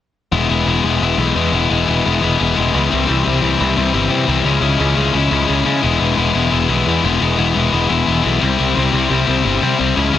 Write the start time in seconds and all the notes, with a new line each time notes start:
0.32 E1 E3 G#3 B3 E4
0.49 E1 E3 G#3 B3 E4
0.66 E1 E3 G#3 B3 E4
0.84 E1 E3 G#3 B3 E4
1.01 E1 E3 G#3 B3 E4
1.18 B1 E3 G#3 B3 E4
1.35 E2 E3 G#3 B3 E4
1.52 E1 E3 G#3 B3 E4
1.70 E1 E3 G#3 B3 E4
1.87 E1 E3 G#3 B3 E4
2.05 E1 E3 G#3 B3 E4
2.22 E1 E3 G#3 B3 E4
2.39 E1 E3 G#3 B3 E4
2.55 E1 E3 G#3 B3 E4
2.73 C#2 E3 G#3 B3 E4
2.89 C2 C3 E3 G3 C4 E4
3.06 C2 C3 E3 G3 C4 E4
3.24 C2 C3 E3 G3 C4 E4
3.41 C2 C3 E3 G3 C4 E4
3.58 C2 C3 E3 G3 C4 E4
3.76 C2 C3 E3 G3 C4 E4
3.93 G1 C3 E3 G3 C4 E4
4.09 C3 E3 G3 C4 E4
4.28 C2 C3 E3 G3 C4 E4
4.44 C#2 C#3 G#3 C#4 E4
4.61 C#2 C#3 G#3 C#4 E4
4.78 C#2 C#3 G#3 C#4 E4
4.95 C#2 C#3 G#3 C#4 E4
5.13 C#2 C#3 G#3 C#4 E4
5.30 C#2 C#3 G#3 C#4 E4
5.46 C#2 C#3 G#3 C#4 E4
5.65 C#3 G#3 C#4 E4
5.82 E1 E3 G#3 B3 E4
5.99 E1 E3 G#3 B3 E4
6.16 E1 E3 G#3 B3 E4
6.35 E1 E3 G#3 B3 E4
6.51 E1 E3 G#3 B3 E4
6.69 B1 E3 G#3 B3 E4
6.87 E2 E3 G#3 B3 E4
7.03 E1 E3 G#3 B3 E4
7.21 E1 E3 G#3 B3 E4
7.38 E1 E3 G#3 B3 E4
7.55 E1 E3 G#3 B3 E4
7.72 E1 E3 G#3 B3 E4
7.88 E1 E3 G#3 B3 E4
8.06 E1 E3 G#3 B3 E4
8.23 B1 E3 G#3 B3 E4
8.40 C2 C3 G3 C4 E4
8.57 C2 C3 G3 C4 E4
8.74 C2 C3 G3 C4 E4
8.91 C2 C3 G3 C4 E4
9.09 C2 C3 G3 C4 E4
9.26 C2 C3 G3 C4 E4
9.44 G1 C3 G3 C4 E4
9.62 C3 G3 C4 E4
9.79 C2 C3 G3 C4 E4
9.96 C#2 C#3 G#3 C#4 E4
10.13 C#2 C#3 G#3 C#4 E4